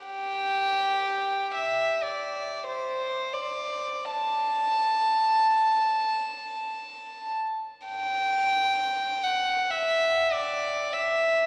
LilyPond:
\new Staff \with { instrumentName = "Violin" } { \time 4/4 \key g \major \tempo 4 = 64 <g' g''>4. e''8 \tuplet 3/2 { d''4 c''8~ c''8 d''4 } | a''2.~ a''8 r8 | g''4. fis''8 \tuplet 3/2 { e''4 d''8~ d''8 e''4 } | }